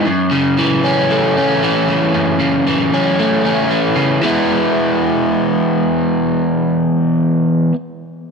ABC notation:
X:1
M:4/4
L:1/8
Q:1/4=115
K:E
V:1 name="Overdriven electric guitar" clef=bass
F,, C, E, C A, C E, C, | F,, C, E, C A, C E, C, | [E,G,B,E]8- | [E,G,B,E]8 |]